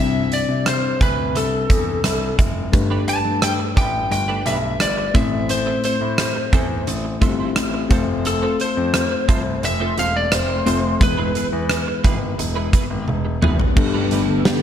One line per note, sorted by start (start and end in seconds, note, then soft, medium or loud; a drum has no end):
0.00 0.23 C2 medium
0.00 0.97 C3 medium
0.00 2.69 G3 medium
0.00 2.70 C4 medium
0.00 2.69 D4 medium
0.00 2.70 E4 medium
0.00 0.34 E5 medium
0.32 0.65 D5 medium
0.32 closed hi-hat medium
0.49 0.75 C3 medium
0.66 1.02 C5 medium
0.66 cross-stick loud
0.66 closed hi-hat medium
1.01 1.35 D2 medium
1.01 1.37 B4 medium
1.01 kick medium
1.01 closed hi-hat medium
1.35 1.61 C2 medium
1.35 2.35 A4 medium
1.35 closed hi-hat medium
1.70 1.96 E2 medium
1.70 kick medium
1.70 closed hi-hat medium
2.04 2.30 C2 medium
2.04 cross-stick medium
2.04 closed hi-hat medium
2.39 2.65 F1 medium
2.39 kick medium
2.39 closed hi-hat medium
2.72 2.99 G1 medium
2.72 3.73 G2 medium
2.72 5.10 A3 medium
2.72 5.10 D4 medium
2.72 5.11 G4 medium
2.72 5.11 B4 medium
2.72 muted clean electric guitar stroke soft
2.72 kick loud
2.72 closed hi-hat medium
2.90 3.04 A3 medium
2.90 3.04 D4 medium
2.90 3.04 G4 medium
2.90 3.04 B4 medium
3.07 3.18 A3 medium
3.07 3.18 D4 medium
3.07 3.18 G4 medium
3.07 3.18 B4 medium
3.07 3.43 A5 medium
3.07 closed hi-hat medium
3.25 3.51 G2 medium
3.25 muted clean electric guitar stroke soft
3.42 3.53 G5 medium
3.42 cross-stick loud
3.42 closed hi-hat medium
3.59 muted clean electric guitar stroke soft
3.76 4.03 A1 medium
3.76 3.90 A3 medium
3.76 3.90 D4 medium
3.76 3.90 G4 medium
3.76 3.90 B4 medium
3.76 4.11 G5 medium
3.76 kick medium
3.76 closed hi-hat medium
3.94 muted clean electric guitar stroke soft
4.11 4.37 G1 medium
4.11 4.47 G5 medium
4.11 muted clean electric guitar stroke soft
4.11 closed hi-hat medium
4.28 4.42 A3 medium
4.28 4.42 D4 medium
4.28 4.42 G4 medium
4.28 4.41 B4 medium
4.45 4.72 B1 medium
4.45 4.56 A3 medium
4.45 4.56 D4 medium
4.45 4.56 G4 medium
4.45 4.56 B4 medium
4.45 4.81 E5 medium
4.45 closed hi-hat medium
4.63 muted clean electric guitar stroke soft
4.80 5.06 G1 medium
4.80 5.15 D5 medium
4.80 cross-stick loud
4.80 closed hi-hat medium
4.97 muted clean electric guitar stroke medium
5.14 5.67 A1 medium
5.14 6.14 A2 medium
5.14 7.17 A3 medium
5.14 5.28 C4 medium
5.14 7.17 C4 medium
5.14 5.28 E4 medium
5.14 7.18 E4 medium
5.14 5.28 A4 medium
5.14 5.28 C5 medium
5.14 7.18 C5 medium
5.14 5.47 E5 medium
5.14 kick loud
5.14 closed hi-hat medium
5.32 muted clean electric guitar stroke soft
5.49 5.82 C5 medium
5.49 muted clean electric guitar stroke soft
5.49 closed hi-hat medium
5.66 5.80 C4 medium
5.66 5.80 E4 medium
5.66 5.80 A4 medium
5.66 5.79 C5 medium
5.83 5.94 C4 medium
5.83 5.94 E4 medium
5.83 5.94 A4 medium
5.83 5.94 C5 medium
5.83 7.18 C5 medium
5.83 closed hi-hat medium
6.01 6.27 A2 medium
6.01 muted clean electric guitar stroke soft
6.18 cross-stick loud
6.18 closed hi-hat medium
6.35 muted clean electric guitar stroke soft
6.53 6.79 E2 medium
6.53 6.66 C4 medium
6.53 6.66 E4 medium
6.53 6.66 A4 medium
6.53 6.66 C5 medium
6.53 kick medium
6.53 closed hi-hat medium
6.70 muted clean electric guitar stroke soft
6.87 7.13 A1 medium
6.87 muted clean electric guitar stroke soft
6.87 closed hi-hat medium
7.04 muted clean electric guitar stroke soft
7.21 7.47 G1 medium
7.21 7.88 A3 medium
7.21 7.35 C4 medium
7.21 7.89 C4 medium
7.21 7.35 E4 medium
7.21 7.91 E4 medium
7.21 7.28 F4 soft
7.21 7.35 A4 medium
7.21 7.35 C5 medium
7.21 kick medium
7.21 closed hi-hat medium
7.29 7.94 G4 medium
7.39 7.50 C4 soft
7.39 7.49 E4 soft
7.39 7.49 A4 medium
7.39 7.49 C5 medium
7.56 7.82 A1 medium
7.56 cross-stick loud
7.56 closed hi-hat medium
7.73 muted clean electric guitar stroke soft
7.89 8.42 F1 loud
7.89 10.62 A3 medium
7.89 10.62 C4 medium
7.89 8.04 C4 medium
7.89 10.63 F4 medium
7.89 8.04 F4 medium
7.89 8.04 A4 medium
7.89 10.63 C5 medium
7.89 8.04 C5 medium
7.89 kick loud
7.89 closed hi-hat medium
8.08 muted clean electric guitar stroke soft
8.25 8.61 A4 medium
8.25 muted clean electric guitar stroke soft
8.25 closed hi-hat medium
8.42 8.56 C4 medium
8.42 8.56 F4 medium
8.42 8.56 A4 medium
8.42 8.55 C5 medium
8.59 8.70 C4 medium
8.59 8.70 F4 medium
8.59 8.70 A4 medium
8.59 8.70 C5 medium
8.59 9.67 C5 medium
8.59 closed hi-hat medium
8.77 9.03 F2 medium
8.77 muted clean electric guitar stroke soft
8.94 cross-stick loud
8.94 closed hi-hat medium
9.11 muted clean electric guitar stroke soft
9.28 9.54 C2 medium
9.28 9.41 C4 medium
9.28 9.42 F4 medium
9.28 9.42 A4 medium
9.28 9.42 C5 medium
9.28 kick medium
9.28 closed hi-hat medium
9.46 muted clean electric guitar stroke soft
9.63 9.89 F1 medium
9.63 9.96 E5 loud
9.63 muted clean electric guitar stroke soft
9.63 closed hi-hat medium
9.80 9.94 C4 medium
9.80 9.94 F4 medium
9.80 9.94 A4 medium
9.80 9.93 C5 medium
9.97 10.23 E1 medium
9.97 10.08 C4 medium
9.97 10.08 F4 medium
9.97 10.08 A4 medium
9.97 10.08 C5 medium
9.97 10.16 F5 loud
9.97 closed hi-hat medium
10.15 10.34 D5 medium
10.15 muted clean electric guitar stroke soft
10.32 10.58 F1 medium
10.32 11.04 C5 medium
10.32 cross-stick loud
10.32 closed hi-hat loud
10.49 muted clean electric guitar stroke soft
10.66 10.92 F1 medium
10.66 11.01 A3 soft
10.66 10.79 C4 medium
10.66 11.01 C4 soft
10.66 10.80 F4 medium
10.66 11.01 F4 soft
10.66 10.80 A4 medium
10.66 10.80 C5 medium
10.66 11.01 C5 medium
10.66 closed hi-hat medium
11.00 11.27 E1 medium
11.00 12.00 E3 medium
11.00 13.72 G#3 medium
11.00 13.73 B3 medium
11.00 13.73 E4 medium
11.00 13.73 B4 medium
11.00 13.05 B4 medium
11.00 muted clean electric guitar stroke soft
11.00 kick loud
11.00 closed hi-hat medium
11.17 11.31 B3 medium
11.17 11.31 E4 medium
11.17 11.31 G#4 medium
11.17 11.31 B4 medium
11.35 11.45 B3 medium
11.35 11.46 E4 medium
11.35 11.46 G#4 medium
11.35 11.46 B4 medium
11.35 closed hi-hat medium
11.52 11.78 E2 medium
11.52 muted clean electric guitar stroke soft
11.69 cross-stick loud
11.69 closed hi-hat medium
11.87 muted clean electric guitar stroke soft
12.04 12.30 G#1 medium
12.04 12.17 B3 medium
12.04 12.17 E4 medium
12.04 12.18 G#4 medium
12.04 12.18 B4 medium
12.04 kick medium
12.04 closed hi-hat medium
12.22 muted clean electric guitar stroke soft
12.38 12.65 E1 medium
12.38 muted clean electric guitar stroke soft
12.38 closed hi-hat medium
12.55 12.69 B3 medium
12.55 12.69 E4 medium
12.55 12.69 G#4 medium
12.55 12.69 B4 medium
12.73 12.83 B3 medium
12.73 12.83 E4 medium
12.73 12.84 G#4 medium
12.73 12.84 B4 medium
12.73 kick medium
12.73 closed hi-hat medium
12.90 13.03 G#1 medium
12.90 muted clean electric guitar stroke soft
13.08 13.34 E1 medium
13.08 high tom soft
13.25 muted clean electric guitar stroke soft
13.42 13.55 F1 medium
13.42 13.55 B3 medium
13.42 13.55 E4 medium
13.42 13.56 G#4 medium
13.42 13.56 B4 medium
13.42 mid tom medium
13.59 muted clean electric guitar stroke soft
13.59 floor tom medium
13.75 14.03 G1 loud
13.75 14.62 G2 medium
13.75 14.62 D3 medium
13.75 14.04 D3 loud
13.75 14.62 G3 medium
13.75 14.62 A3 medium
13.75 14.62 B3 medium
13.75 14.04 B3 loud
13.75 14.62 D4 medium
13.75 14.62 G4 medium
13.75 14.04 G4 loud
13.75 14.62 A4 medium
13.75 muted clean electric guitar stroke soft
13.75 kick loud
13.75 crash medium
13.93 14.07 A3 medium
13.93 14.07 D4 medium
13.93 14.07 G4 medium
13.93 14.07 B4 medium
14.11 14.37 G1 medium
14.11 14.21 A3 medium
14.11 14.22 D4 medium
14.11 14.22 G4 medium
14.11 14.22 B4 medium
14.11 closed hi-hat medium
14.28 14.42 D3 medium
14.28 14.42 B3 medium
14.28 14.42 A4 medium
14.28 muted clean electric guitar stroke soft
14.45 snare loud
14.45 closed hi-hat medium